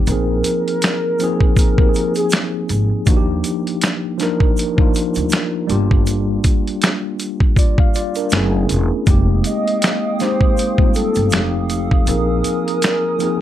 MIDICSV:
0, 0, Header, 1, 6, 480
1, 0, Start_track
1, 0, Tempo, 750000
1, 44, Time_signature, 4, 2, 24, 8
1, 8584, End_track
2, 0, Start_track
2, 0, Title_t, "Ambient pad"
2, 0, Program_c, 0, 92
2, 5804, Note_on_c, 0, 79, 71
2, 5805, Note_on_c, 0, 77, 76
2, 5805, Note_on_c, 0, 87, 95
2, 5807, Note_on_c, 0, 58, 75
2, 7230, Note_off_c, 0, 77, 0
2, 7230, Note_off_c, 0, 79, 0
2, 7230, Note_off_c, 0, 87, 0
2, 7231, Note_off_c, 0, 58, 0
2, 7246, Note_on_c, 0, 69, 79
2, 7247, Note_on_c, 0, 87, 90
2, 7249, Note_on_c, 0, 77, 66
2, 7720, Note_off_c, 0, 69, 0
2, 7721, Note_off_c, 0, 77, 0
2, 7724, Note_on_c, 0, 70, 78
2, 7725, Note_on_c, 0, 80, 74
2, 8584, Note_off_c, 0, 70, 0
2, 8584, Note_off_c, 0, 80, 0
2, 8584, Note_off_c, 0, 87, 0
2, 8584, End_track
3, 0, Start_track
3, 0, Title_t, "Soft synth lead"
3, 0, Program_c, 1, 80
3, 52, Note_on_c, 1, 70, 121
3, 982, Note_off_c, 1, 70, 0
3, 1012, Note_on_c, 1, 70, 75
3, 1363, Note_off_c, 1, 70, 0
3, 1390, Note_on_c, 1, 68, 93
3, 1478, Note_off_c, 1, 68, 0
3, 6056, Note_on_c, 1, 75, 81
3, 6504, Note_off_c, 1, 75, 0
3, 6535, Note_on_c, 1, 72, 84
3, 6984, Note_off_c, 1, 72, 0
3, 7012, Note_on_c, 1, 69, 91
3, 7363, Note_off_c, 1, 69, 0
3, 7733, Note_on_c, 1, 70, 124
3, 8584, Note_off_c, 1, 70, 0
3, 8584, End_track
4, 0, Start_track
4, 0, Title_t, "Tine electric piano"
4, 0, Program_c, 2, 4
4, 0, Control_c, 2, 64, 127
4, 47, Note_on_c, 2, 53, 75
4, 52, Control_c, 2, 64, 0
4, 53, Note_on_c, 2, 58, 67
4, 60, Note_on_c, 2, 60, 73
4, 68, Note_on_c, 2, 63, 63
4, 75, Note_on_c, 2, 68, 89
4, 163, Control_c, 2, 64, 127
4, 609, Note_off_c, 2, 53, 0
4, 612, Note_off_c, 2, 58, 0
4, 616, Note_off_c, 2, 60, 0
4, 620, Note_off_c, 2, 63, 0
4, 623, Note_off_c, 2, 68, 0
4, 762, Note_on_c, 2, 53, 86
4, 770, Note_on_c, 2, 58, 74
4, 776, Note_on_c, 2, 60, 82
4, 784, Note_on_c, 2, 63, 80
4, 791, Note_on_c, 2, 68, 102
4, 1045, Note_off_c, 2, 53, 0
4, 1049, Note_off_c, 2, 58, 0
4, 1052, Note_off_c, 2, 60, 0
4, 1056, Note_off_c, 2, 63, 0
4, 1059, Note_off_c, 2, 68, 0
4, 1141, Note_on_c, 2, 53, 71
4, 1148, Note_on_c, 2, 58, 65
4, 1155, Note_on_c, 2, 60, 63
4, 1161, Note_on_c, 2, 63, 67
4, 1169, Note_on_c, 2, 67, 62
4, 1191, Note_off_c, 2, 67, 0
4, 1210, Note_on_c, 2, 68, 81
4, 1775, Note_off_c, 2, 53, 0
4, 1779, Note_off_c, 2, 58, 0
4, 1782, Note_off_c, 2, 60, 0
4, 1785, Note_off_c, 2, 63, 0
4, 1810, Note_off_c, 2, 68, 0
4, 1958, Note_on_c, 2, 53, 90
4, 1964, Note_on_c, 2, 58, 88
4, 1971, Control_c, 2, 64, 0
4, 1971, Note_on_c, 2, 62, 85
4, 1979, Note_on_c, 2, 63, 81
4, 1985, Note_on_c, 2, 66, 82
4, 2022, Note_off_c, 2, 66, 0
4, 2027, Note_on_c, 2, 67, 102
4, 2097, Control_c, 2, 64, 127
4, 2524, Note_off_c, 2, 53, 0
4, 2528, Note_off_c, 2, 58, 0
4, 2531, Note_off_c, 2, 62, 0
4, 2535, Note_off_c, 2, 63, 0
4, 2559, Note_off_c, 2, 67, 0
4, 2674, Note_on_c, 2, 53, 91
4, 2682, Note_on_c, 2, 58, 82
4, 2689, Note_on_c, 2, 62, 83
4, 2695, Note_on_c, 2, 63, 82
4, 2703, Note_on_c, 2, 70, 102
4, 2961, Note_off_c, 2, 53, 0
4, 2965, Note_off_c, 2, 58, 0
4, 2968, Note_off_c, 2, 62, 0
4, 2971, Note_off_c, 2, 63, 0
4, 2975, Note_off_c, 2, 70, 0
4, 3051, Note_on_c, 2, 53, 83
4, 3058, Note_on_c, 2, 58, 76
4, 3065, Note_on_c, 2, 62, 73
4, 3072, Note_on_c, 2, 63, 83
4, 3079, Note_on_c, 2, 65, 92
4, 3629, Note_off_c, 2, 58, 0
4, 3630, Note_on_c, 2, 55, 107
4, 3636, Note_off_c, 2, 62, 0
4, 3636, Note_on_c, 2, 58, 92
4, 3639, Note_off_c, 2, 53, 0
4, 3643, Note_off_c, 2, 65, 0
4, 3643, Note_on_c, 2, 62, 85
4, 3649, Note_off_c, 2, 63, 0
4, 3650, Note_on_c, 2, 65, 91
4, 3653, Control_c, 2, 64, 0
4, 3658, Note_on_c, 2, 67, 107
4, 3752, Control_c, 2, 64, 127
4, 4412, Note_off_c, 2, 55, 0
4, 4415, Note_off_c, 2, 58, 0
4, 4418, Note_off_c, 2, 62, 0
4, 4422, Note_off_c, 2, 65, 0
4, 4426, Note_off_c, 2, 67, 0
4, 4854, Note_on_c, 2, 74, 68
4, 4858, Note_on_c, 2, 65, 55
4, 4980, Note_off_c, 2, 74, 0
4, 4982, Note_off_c, 2, 65, 0
4, 4991, Note_on_c, 2, 77, 73
4, 5084, Note_off_c, 2, 77, 0
4, 5091, Note_on_c, 2, 74, 69
4, 5094, Note_on_c, 2, 65, 56
4, 5218, Note_off_c, 2, 74, 0
4, 5220, Note_off_c, 2, 65, 0
4, 5225, Note_on_c, 2, 70, 66
4, 5229, Note_on_c, 2, 62, 60
4, 5323, Note_on_c, 2, 57, 90
4, 5329, Note_on_c, 2, 59, 77
4, 5332, Control_c, 2, 64, 0
4, 5337, Note_on_c, 2, 61, 90
4, 5344, Note_on_c, 2, 64, 83
4, 5350, Note_on_c, 2, 68, 96
4, 5444, Control_c, 2, 64, 127
4, 5451, Note_off_c, 2, 70, 0
4, 5453, Note_off_c, 2, 62, 0
4, 5721, Note_off_c, 2, 57, 0
4, 5725, Note_off_c, 2, 59, 0
4, 5729, Note_off_c, 2, 61, 0
4, 5732, Note_off_c, 2, 64, 0
4, 5735, Note_off_c, 2, 68, 0
4, 5798, Note_on_c, 2, 56, 91
4, 5805, Note_on_c, 2, 58, 87
4, 5811, Control_c, 2, 64, 0
4, 5813, Note_on_c, 2, 60, 76
4, 5819, Note_on_c, 2, 63, 80
4, 5827, Note_on_c, 2, 67, 99
4, 5923, Control_c, 2, 64, 127
4, 6365, Note_off_c, 2, 56, 0
4, 6368, Note_off_c, 2, 58, 0
4, 6372, Note_off_c, 2, 60, 0
4, 6375, Note_off_c, 2, 63, 0
4, 6379, Note_off_c, 2, 67, 0
4, 6521, Note_on_c, 2, 56, 77
4, 6528, Note_on_c, 2, 58, 68
4, 6535, Note_on_c, 2, 60, 67
4, 6543, Note_on_c, 2, 63, 74
4, 6549, Note_on_c, 2, 67, 91
4, 6804, Note_off_c, 2, 56, 0
4, 6808, Note_off_c, 2, 58, 0
4, 6811, Note_off_c, 2, 60, 0
4, 6815, Note_off_c, 2, 63, 0
4, 6818, Note_off_c, 2, 67, 0
4, 6899, Note_on_c, 2, 55, 72
4, 6905, Note_on_c, 2, 58, 60
4, 6913, Note_on_c, 2, 60, 64
4, 6920, Note_on_c, 2, 63, 66
4, 6927, Note_on_c, 2, 65, 76
4, 7238, Note_on_c, 2, 53, 82
4, 7243, Note_off_c, 2, 55, 0
4, 7244, Note_off_c, 2, 60, 0
4, 7245, Note_on_c, 2, 56, 60
4, 7246, Note_off_c, 2, 58, 0
4, 7252, Control_c, 2, 64, 0
4, 7252, Note_on_c, 2, 60, 68
4, 7253, Note_off_c, 2, 63, 0
4, 7256, Note_off_c, 2, 65, 0
4, 7260, Note_on_c, 2, 63, 73
4, 7267, Note_on_c, 2, 67, 82
4, 7287, Note_on_c, 2, 57, 76
4, 7292, Note_off_c, 2, 56, 0
4, 7345, Control_c, 2, 64, 127
4, 7639, Note_off_c, 2, 53, 0
4, 7646, Note_off_c, 2, 60, 0
4, 7650, Note_off_c, 2, 63, 0
4, 7653, Note_off_c, 2, 67, 0
4, 7663, Note_off_c, 2, 57, 0
4, 7716, Note_on_c, 2, 53, 75
4, 7723, Note_on_c, 2, 58, 72
4, 7729, Note_on_c, 2, 60, 67
4, 7732, Control_c, 2, 64, 0
4, 7737, Note_on_c, 2, 63, 71
4, 7743, Note_on_c, 2, 68, 82
4, 7832, Control_c, 2, 64, 127
4, 8283, Note_off_c, 2, 53, 0
4, 8287, Note_off_c, 2, 58, 0
4, 8290, Note_off_c, 2, 60, 0
4, 8294, Note_off_c, 2, 63, 0
4, 8297, Note_off_c, 2, 68, 0
4, 8440, Note_on_c, 2, 53, 101
4, 8447, Note_on_c, 2, 58, 84
4, 8454, Note_on_c, 2, 60, 85
4, 8461, Note_on_c, 2, 63, 82
4, 8467, Note_on_c, 2, 68, 98
4, 8584, Note_off_c, 2, 53, 0
4, 8584, Note_off_c, 2, 58, 0
4, 8584, Note_off_c, 2, 60, 0
4, 8584, Note_off_c, 2, 63, 0
4, 8584, Note_off_c, 2, 68, 0
4, 8584, End_track
5, 0, Start_track
5, 0, Title_t, "Upright bass"
5, 0, Program_c, 3, 32
5, 48, Note_on_c, 3, 34, 103
5, 262, Note_off_c, 3, 34, 0
5, 1728, Note_on_c, 3, 32, 91
5, 1850, Note_off_c, 3, 32, 0
5, 1967, Note_on_c, 3, 39, 104
5, 2181, Note_off_c, 3, 39, 0
5, 3309, Note_on_c, 3, 38, 89
5, 3397, Note_off_c, 3, 38, 0
5, 3647, Note_on_c, 3, 31, 92
5, 4077, Note_off_c, 3, 31, 0
5, 5329, Note_on_c, 3, 30, 104
5, 5543, Note_off_c, 3, 30, 0
5, 5572, Note_on_c, 3, 28, 88
5, 5692, Note_off_c, 3, 28, 0
5, 5808, Note_on_c, 3, 29, 116
5, 6022, Note_off_c, 3, 29, 0
5, 7148, Note_on_c, 3, 31, 94
5, 7252, Note_off_c, 3, 31, 0
5, 7252, Note_on_c, 3, 29, 91
5, 7680, Note_off_c, 3, 29, 0
5, 7730, Note_on_c, 3, 34, 106
5, 7943, Note_off_c, 3, 34, 0
5, 8584, End_track
6, 0, Start_track
6, 0, Title_t, "Drums"
6, 42, Note_on_c, 9, 82, 67
6, 46, Note_on_c, 9, 42, 75
6, 106, Note_off_c, 9, 82, 0
6, 110, Note_off_c, 9, 42, 0
6, 283, Note_on_c, 9, 42, 70
6, 284, Note_on_c, 9, 82, 61
6, 347, Note_off_c, 9, 42, 0
6, 348, Note_off_c, 9, 82, 0
6, 433, Note_on_c, 9, 42, 37
6, 497, Note_off_c, 9, 42, 0
6, 525, Note_on_c, 9, 42, 91
6, 526, Note_on_c, 9, 82, 67
6, 538, Note_on_c, 9, 26, 109
6, 539, Note_on_c, 9, 38, 112
6, 589, Note_off_c, 9, 42, 0
6, 590, Note_off_c, 9, 82, 0
6, 602, Note_off_c, 9, 26, 0
6, 603, Note_off_c, 9, 38, 0
6, 762, Note_on_c, 9, 82, 45
6, 768, Note_on_c, 9, 42, 55
6, 826, Note_off_c, 9, 82, 0
6, 832, Note_off_c, 9, 42, 0
6, 899, Note_on_c, 9, 36, 93
6, 963, Note_off_c, 9, 36, 0
6, 1002, Note_on_c, 9, 36, 98
6, 1002, Note_on_c, 9, 82, 57
6, 1017, Note_on_c, 9, 42, 81
6, 1066, Note_off_c, 9, 36, 0
6, 1066, Note_off_c, 9, 82, 0
6, 1081, Note_off_c, 9, 42, 0
6, 1140, Note_on_c, 9, 36, 99
6, 1204, Note_off_c, 9, 36, 0
6, 1242, Note_on_c, 9, 82, 48
6, 1254, Note_on_c, 9, 42, 66
6, 1306, Note_off_c, 9, 82, 0
6, 1318, Note_off_c, 9, 42, 0
6, 1374, Note_on_c, 9, 82, 54
6, 1381, Note_on_c, 9, 42, 39
6, 1438, Note_off_c, 9, 82, 0
6, 1445, Note_off_c, 9, 42, 0
6, 1471, Note_on_c, 9, 82, 74
6, 1486, Note_on_c, 9, 42, 97
6, 1493, Note_on_c, 9, 26, 93
6, 1494, Note_on_c, 9, 38, 109
6, 1535, Note_off_c, 9, 82, 0
6, 1550, Note_off_c, 9, 42, 0
6, 1557, Note_off_c, 9, 26, 0
6, 1558, Note_off_c, 9, 38, 0
6, 1724, Note_on_c, 9, 42, 65
6, 1724, Note_on_c, 9, 82, 49
6, 1788, Note_off_c, 9, 42, 0
6, 1788, Note_off_c, 9, 82, 0
6, 1959, Note_on_c, 9, 82, 66
6, 1964, Note_on_c, 9, 36, 123
6, 1964, Note_on_c, 9, 42, 76
6, 2023, Note_off_c, 9, 82, 0
6, 2028, Note_off_c, 9, 36, 0
6, 2028, Note_off_c, 9, 42, 0
6, 2201, Note_on_c, 9, 42, 69
6, 2204, Note_on_c, 9, 82, 59
6, 2265, Note_off_c, 9, 42, 0
6, 2268, Note_off_c, 9, 82, 0
6, 2349, Note_on_c, 9, 42, 35
6, 2413, Note_off_c, 9, 42, 0
6, 2442, Note_on_c, 9, 42, 93
6, 2446, Note_on_c, 9, 82, 68
6, 2455, Note_on_c, 9, 26, 100
6, 2456, Note_on_c, 9, 38, 112
6, 2506, Note_off_c, 9, 42, 0
6, 2510, Note_off_c, 9, 82, 0
6, 2519, Note_off_c, 9, 26, 0
6, 2520, Note_off_c, 9, 38, 0
6, 2684, Note_on_c, 9, 82, 44
6, 2686, Note_on_c, 9, 42, 54
6, 2694, Note_on_c, 9, 38, 33
6, 2748, Note_off_c, 9, 82, 0
6, 2750, Note_off_c, 9, 42, 0
6, 2758, Note_off_c, 9, 38, 0
6, 2818, Note_on_c, 9, 36, 91
6, 2882, Note_off_c, 9, 36, 0
6, 2923, Note_on_c, 9, 82, 56
6, 2939, Note_on_c, 9, 42, 83
6, 2987, Note_off_c, 9, 82, 0
6, 3003, Note_off_c, 9, 42, 0
6, 3059, Note_on_c, 9, 36, 100
6, 3123, Note_off_c, 9, 36, 0
6, 3163, Note_on_c, 9, 82, 46
6, 3174, Note_on_c, 9, 42, 68
6, 3227, Note_off_c, 9, 82, 0
6, 3238, Note_off_c, 9, 42, 0
6, 3293, Note_on_c, 9, 82, 53
6, 3302, Note_on_c, 9, 42, 37
6, 3357, Note_off_c, 9, 82, 0
6, 3366, Note_off_c, 9, 42, 0
6, 3389, Note_on_c, 9, 82, 76
6, 3406, Note_on_c, 9, 42, 93
6, 3413, Note_on_c, 9, 26, 89
6, 3414, Note_on_c, 9, 38, 120
6, 3453, Note_off_c, 9, 82, 0
6, 3470, Note_off_c, 9, 42, 0
6, 3477, Note_off_c, 9, 26, 0
6, 3478, Note_off_c, 9, 38, 0
6, 3645, Note_on_c, 9, 42, 62
6, 3645, Note_on_c, 9, 82, 46
6, 3709, Note_off_c, 9, 42, 0
6, 3709, Note_off_c, 9, 82, 0
6, 3783, Note_on_c, 9, 36, 92
6, 3847, Note_off_c, 9, 36, 0
6, 3880, Note_on_c, 9, 82, 66
6, 3885, Note_on_c, 9, 42, 79
6, 3944, Note_off_c, 9, 82, 0
6, 3949, Note_off_c, 9, 42, 0
6, 4122, Note_on_c, 9, 42, 75
6, 4122, Note_on_c, 9, 82, 56
6, 4124, Note_on_c, 9, 36, 85
6, 4186, Note_off_c, 9, 42, 0
6, 4186, Note_off_c, 9, 82, 0
6, 4188, Note_off_c, 9, 36, 0
6, 4272, Note_on_c, 9, 42, 36
6, 4336, Note_off_c, 9, 42, 0
6, 4362, Note_on_c, 9, 42, 90
6, 4368, Note_on_c, 9, 82, 70
6, 4375, Note_on_c, 9, 26, 103
6, 4376, Note_on_c, 9, 38, 122
6, 4426, Note_off_c, 9, 42, 0
6, 4432, Note_off_c, 9, 82, 0
6, 4439, Note_off_c, 9, 26, 0
6, 4440, Note_off_c, 9, 38, 0
6, 4605, Note_on_c, 9, 82, 43
6, 4606, Note_on_c, 9, 42, 55
6, 4669, Note_off_c, 9, 82, 0
6, 4670, Note_off_c, 9, 42, 0
6, 4739, Note_on_c, 9, 36, 89
6, 4803, Note_off_c, 9, 36, 0
6, 4841, Note_on_c, 9, 36, 98
6, 4844, Note_on_c, 9, 82, 57
6, 4856, Note_on_c, 9, 42, 77
6, 4905, Note_off_c, 9, 36, 0
6, 4908, Note_off_c, 9, 82, 0
6, 4920, Note_off_c, 9, 42, 0
6, 4980, Note_on_c, 9, 36, 99
6, 5044, Note_off_c, 9, 36, 0
6, 5084, Note_on_c, 9, 82, 48
6, 5093, Note_on_c, 9, 42, 72
6, 5148, Note_off_c, 9, 82, 0
6, 5157, Note_off_c, 9, 42, 0
6, 5216, Note_on_c, 9, 82, 53
6, 5219, Note_on_c, 9, 42, 36
6, 5280, Note_off_c, 9, 82, 0
6, 5283, Note_off_c, 9, 42, 0
6, 5311, Note_on_c, 9, 82, 73
6, 5325, Note_on_c, 9, 42, 99
6, 5332, Note_on_c, 9, 26, 85
6, 5333, Note_on_c, 9, 38, 119
6, 5375, Note_off_c, 9, 82, 0
6, 5389, Note_off_c, 9, 42, 0
6, 5396, Note_off_c, 9, 26, 0
6, 5397, Note_off_c, 9, 38, 0
6, 5563, Note_on_c, 9, 42, 66
6, 5567, Note_on_c, 9, 82, 46
6, 5627, Note_off_c, 9, 42, 0
6, 5631, Note_off_c, 9, 82, 0
6, 5802, Note_on_c, 9, 82, 66
6, 5804, Note_on_c, 9, 36, 118
6, 5804, Note_on_c, 9, 42, 78
6, 5866, Note_off_c, 9, 82, 0
6, 5868, Note_off_c, 9, 36, 0
6, 5868, Note_off_c, 9, 42, 0
6, 6043, Note_on_c, 9, 42, 70
6, 6047, Note_on_c, 9, 82, 59
6, 6107, Note_off_c, 9, 42, 0
6, 6111, Note_off_c, 9, 82, 0
6, 6192, Note_on_c, 9, 42, 36
6, 6256, Note_off_c, 9, 42, 0
6, 6285, Note_on_c, 9, 42, 88
6, 6288, Note_on_c, 9, 82, 69
6, 6298, Note_on_c, 9, 26, 105
6, 6299, Note_on_c, 9, 38, 122
6, 6349, Note_off_c, 9, 42, 0
6, 6352, Note_off_c, 9, 82, 0
6, 6362, Note_off_c, 9, 26, 0
6, 6363, Note_off_c, 9, 38, 0
6, 6526, Note_on_c, 9, 82, 43
6, 6529, Note_on_c, 9, 42, 53
6, 6537, Note_on_c, 9, 38, 33
6, 6590, Note_off_c, 9, 82, 0
6, 6593, Note_off_c, 9, 42, 0
6, 6601, Note_off_c, 9, 38, 0
6, 6660, Note_on_c, 9, 36, 92
6, 6724, Note_off_c, 9, 36, 0
6, 6766, Note_on_c, 9, 82, 53
6, 6778, Note_on_c, 9, 42, 81
6, 6830, Note_off_c, 9, 82, 0
6, 6842, Note_off_c, 9, 42, 0
6, 6901, Note_on_c, 9, 36, 97
6, 6965, Note_off_c, 9, 36, 0
6, 7002, Note_on_c, 9, 82, 50
6, 7015, Note_on_c, 9, 42, 70
6, 7066, Note_off_c, 9, 82, 0
6, 7079, Note_off_c, 9, 42, 0
6, 7135, Note_on_c, 9, 82, 58
6, 7141, Note_on_c, 9, 42, 38
6, 7199, Note_off_c, 9, 82, 0
6, 7205, Note_off_c, 9, 42, 0
6, 7233, Note_on_c, 9, 82, 76
6, 7247, Note_on_c, 9, 42, 94
6, 7254, Note_on_c, 9, 26, 90
6, 7255, Note_on_c, 9, 38, 106
6, 7297, Note_off_c, 9, 82, 0
6, 7311, Note_off_c, 9, 42, 0
6, 7318, Note_off_c, 9, 26, 0
6, 7319, Note_off_c, 9, 38, 0
6, 7486, Note_on_c, 9, 42, 68
6, 7486, Note_on_c, 9, 82, 50
6, 7550, Note_off_c, 9, 42, 0
6, 7550, Note_off_c, 9, 82, 0
6, 7625, Note_on_c, 9, 36, 91
6, 7689, Note_off_c, 9, 36, 0
6, 7723, Note_on_c, 9, 82, 67
6, 7726, Note_on_c, 9, 42, 75
6, 7787, Note_off_c, 9, 82, 0
6, 7790, Note_off_c, 9, 42, 0
6, 7964, Note_on_c, 9, 42, 69
6, 7966, Note_on_c, 9, 82, 58
6, 8028, Note_off_c, 9, 42, 0
6, 8030, Note_off_c, 9, 82, 0
6, 8114, Note_on_c, 9, 42, 37
6, 8178, Note_off_c, 9, 42, 0
6, 8206, Note_on_c, 9, 42, 90
6, 8207, Note_on_c, 9, 82, 69
6, 8219, Note_on_c, 9, 26, 108
6, 8220, Note_on_c, 9, 38, 120
6, 8270, Note_off_c, 9, 42, 0
6, 8271, Note_off_c, 9, 82, 0
6, 8283, Note_off_c, 9, 26, 0
6, 8284, Note_off_c, 9, 38, 0
6, 8445, Note_on_c, 9, 82, 45
6, 8450, Note_on_c, 9, 42, 53
6, 8509, Note_off_c, 9, 82, 0
6, 8514, Note_off_c, 9, 42, 0
6, 8584, End_track
0, 0, End_of_file